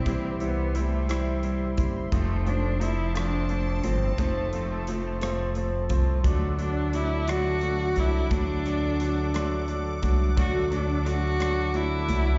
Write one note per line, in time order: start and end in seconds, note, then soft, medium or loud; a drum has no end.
0.00 0.41 C4 medium
0.00 2.08 G4 medium
0.00 2.08 E5 medium
0.00 6.20 C6 medium
0.05 1.74 C2 medium
0.05 0.74 C3 medium
0.05 0.73 E3 medium
0.05 0.74 G3 medium
0.05 0.32 G3 medium
0.05 0.32 C4 medium
0.05 0.75 E4 medium
0.05 0.32 E4 medium
0.05 kick loud
0.05 closed hi-hat medium
0.40 0.66 G3 medium
0.40 0.78 B3 medium
0.40 0.67 C4 medium
0.40 0.67 E4 medium
0.40 closed hi-hat soft
0.74 1.09 E3 medium
0.74 1.00 G3 medium
0.74 1.09 G3 medium
0.74 1.12 A3 medium
0.74 1.01 C4 medium
0.74 1.08 C4 medium
0.74 1.01 E4 medium
0.74 1.08 E4 medium
0.74 closed hi-hat medium
1.09 1.78 C3 soft
1.09 1.78 E3 soft
1.09 1.35 G3 medium
1.09 1.78 G3 soft
1.09 1.87 G3 medium
1.09 1.78 C4 medium
1.09 1.35 C4 medium
1.09 1.77 E4 medium
1.09 1.35 E4 medium
1.09 cross-stick loud
1.09 closed hi-hat medium
1.43 1.70 G3 medium
1.43 1.70 C4 medium
1.43 1.70 E4 medium
1.43 closed hi-hat soft
1.77 2.10 F#1 medium
1.77 2.03 G3 medium
1.77 2.13 G3 soft
1.77 2.04 C4 medium
1.77 2.12 C4 soft
1.77 2.04 E4 medium
1.77 2.12 E4 soft
1.77 kick medium
1.77 closed hi-hat medium
2.12 3.80 F1 medium
2.12 2.81 F2 medium
2.12 2.81 C3 medium
2.12 2.38 F3 medium
2.12 2.79 F3 medium
2.12 2.38 A3 medium
2.12 2.49 A3 medium
2.12 2.81 A3 medium
2.12 2.38 C4 medium
2.12 2.81 C4 medium
2.12 2.82 F4 medium
2.12 12.38 A4 medium
2.12 6.21 A5 medium
2.12 kick loud
2.12 closed hi-hat medium
2.46 2.72 F3 medium
2.46 2.72 A3 medium
2.46 2.72 C4 medium
2.46 2.84 D4 medium
2.46 closed hi-hat soft
2.80 3.06 F3 medium
2.80 3.15 F3 soft
2.80 3.06 A3 medium
2.80 3.15 A3 soft
2.80 3.07 C4 medium
2.80 3.14 C4 medium
2.80 3.16 E4 medium
2.80 closed hi-hat medium
3.14 3.85 F2 soft
3.14 3.85 C3 medium
3.14 3.41 F3 medium
3.14 3.84 F3 medium
3.14 3.41 A3 medium
3.14 3.84 A3 medium
3.14 3.41 C4 medium
3.14 3.83 C4 medium
3.14 3.86 D4 medium
3.14 3.82 F4 medium
3.14 cross-stick loud
3.14 closed hi-hat medium
3.49 3.76 F3 medium
3.49 3.76 A3 medium
3.49 3.76 C4 medium
3.49 closed hi-hat soft
3.83 4.17 G1 medium
3.83 4.10 F3 medium
3.83 4.17 F3 soft
3.83 4.10 A3 medium
3.83 4.18 A3 soft
3.83 4.18 C4 soft
3.83 4.10 C4 medium
3.83 4.20 C4 medium
3.83 4.18 F4 soft
3.83 closed hi-hat medium
4.18 5.86 F1 medium
4.18 4.87 F2 medium
4.18 4.87 C3 medium
4.18 4.44 F3 medium
4.18 4.86 F3 medium
4.18 5.56 A3 medium
4.18 4.87 A3 medium
4.18 4.45 A3 medium
4.18 4.87 C4 medium
4.18 4.45 C4 medium
4.18 4.87 F4 medium
4.18 kick loud
4.18 closed hi-hat medium
4.53 4.79 F3 medium
4.53 4.79 A3 medium
4.53 4.79 C4 medium
4.53 closed hi-hat soft
4.87 5.21 F3 soft
4.87 5.14 F3 medium
4.87 5.20 A3 medium
4.87 5.14 A3 medium
4.87 5.20 C4 medium
4.87 5.14 C4 medium
4.87 5.20 F4 medium
4.87 closed hi-hat medium
5.21 5.91 F2 medium
5.21 5.90 C3 medium
5.21 5.90 F3 medium
5.21 5.48 F3 medium
5.21 5.90 A3 medium
5.21 5.48 A3 medium
5.21 5.89 C4 medium
5.21 5.48 C4 medium
5.21 5.88 F4 medium
5.21 cross-stick loud
5.21 closed hi-hat medium
5.55 5.82 F3 medium
5.55 5.82 A3 medium
5.55 5.82 C4 medium
5.55 closed hi-hat soft
5.90 6.22 C2 medium
5.90 6.16 F3 medium
5.90 6.24 F3 soft
5.90 6.16 A3 medium
5.90 6.23 A3 soft
5.90 6.25 C4 soft
5.90 6.16 C4 medium
5.90 6.24 F4 medium
5.90 kick medium
5.90 closed hi-hat medium
6.23 7.92 D2 medium
6.23 6.92 D3 medium
6.23 6.50 F#3 medium
6.23 6.50 A3 medium
6.23 6.92 A3 medium
6.23 6.57 A3 medium
6.23 6.50 D4 medium
6.23 6.94 D4 medium
6.23 6.94 F#4 medium
6.23 12.38 F#5 medium
6.23 12.38 D6 medium
6.23 kick loud
6.23 closed hi-hat medium
6.58 6.84 F#3 medium
6.58 6.84 A3 medium
6.58 6.85 D4 medium
6.58 6.97 D4 medium
6.58 closed hi-hat soft
6.93 7.27 D3 medium
6.93 7.19 F#3 medium
6.93 7.27 A3 medium
6.93 7.19 A3 medium
6.93 7.19 D4 medium
6.93 7.27 D4 medium
6.93 7.30 E4 medium
6.93 7.26 F#4 medium
6.93 closed hi-hat medium
7.27 8.31 D3 soft
7.27 7.54 F#3 medium
7.27 7.97 A3 medium
7.27 7.54 A3 medium
7.27 7.97 D4 medium
7.27 7.54 D4 medium
7.27 7.96 F#4 medium
7.27 8.00 F#4 loud
7.27 cross-stick loud
7.27 closed hi-hat medium
7.61 7.88 F#3 medium
7.61 7.88 A3 medium
7.61 7.88 D4 medium
7.61 closed hi-hat soft
7.96 8.29 C2 medium
7.96 8.22 F#3 medium
7.96 8.22 A3 medium
7.96 8.30 A3 soft
7.96 8.22 D4 medium
7.96 8.31 D4 soft
7.96 8.33 E4 medium
7.96 8.31 F#4 soft
7.96 closed hi-hat medium
8.31 9.99 D2 medium
8.31 8.99 D3 medium
8.31 8.57 F#3 medium
8.31 9.00 A3 medium
8.31 8.57 A3 medium
8.31 9.68 D4 medium
8.31 8.57 D4 medium
8.31 9.01 D4 medium
8.31 9.01 F#4 medium
8.31 kick loud
8.31 closed hi-hat medium
8.66 8.91 F#3 medium
8.66 8.92 A3 medium
8.66 8.92 D4 medium
8.66 cross-stick soft
8.66 closed hi-hat soft
9.00 9.34 D3 medium
9.00 9.26 F#3 medium
9.00 9.26 A3 medium
9.00 9.34 A3 medium
9.00 9.33 D4 medium
9.00 9.26 D4 medium
9.00 9.33 F#4 medium
9.00 closed hi-hat medium
9.34 10.37 D3 medium
9.34 9.60 F#3 medium
9.34 9.60 A3 medium
9.34 10.03 A3 medium
9.34 10.04 D4 medium
9.34 9.60 D4 medium
9.34 10.02 F#4 medium
9.34 cross-stick loud
9.34 closed hi-hat medium
9.68 9.94 F#3 medium
9.68 9.94 A3 medium
9.68 9.94 D4 medium
9.68 closed hi-hat soft
10.02 10.35 C2 medium
10.02 10.28 F#3 medium
10.02 10.28 A3 medium
10.02 10.36 A3 soft
10.02 10.28 D4 medium
10.02 10.36 D4 medium
10.02 10.37 F#4 medium
10.02 kick medium
10.02 closed hi-hat medium
10.36 12.05 D2 loud
10.36 11.05 D3 medium
10.36 10.62 F#3 medium
10.36 10.63 A3 medium
10.36 11.04 A3 medium
10.36 10.63 D4 medium
10.36 11.06 D4 medium
10.36 11.06 F#4 medium
10.36 10.70 F#4 loud
10.36 kick loud
10.36 closed hi-hat medium
10.71 10.97 F#3 medium
10.71 10.97 A3 medium
10.71 10.97 D4 medium
10.71 cross-stick soft
10.71 closed hi-hat soft
10.75 11.10 D4 medium
11.04 11.39 D3 medium
11.04 11.31 F#3 medium
11.04 11.31 A3 medium
11.04 11.39 A3 medium
11.04 11.31 D4 medium
11.04 11.39 D4 medium
11.04 11.38 F#4 medium
11.04 11.77 F#4 loud
11.04 closed hi-hat medium
11.39 12.38 D3 medium
11.39 11.66 F#3 medium
11.39 11.66 A3 medium
11.39 12.09 A3 medium
11.39 11.66 D4 medium
11.39 12.09 D4 medium
11.39 12.08 F#4 medium
11.39 cross-stick loud
11.39 closed hi-hat medium
11.74 12.00 F#3 medium
11.74 12.00 A3 medium
11.74 12.00 D4 medium
11.74 12.38 E4 loud
11.74 closed hi-hat soft
12.08 12.38 C2 medium
12.08 12.34 F#3 medium
12.08 12.34 A3 medium
12.08 12.38 A3 soft
12.08 12.34 D4 medium
12.08 12.38 D4 soft
12.08 12.38 F#4 soft
12.08 closed hi-hat medium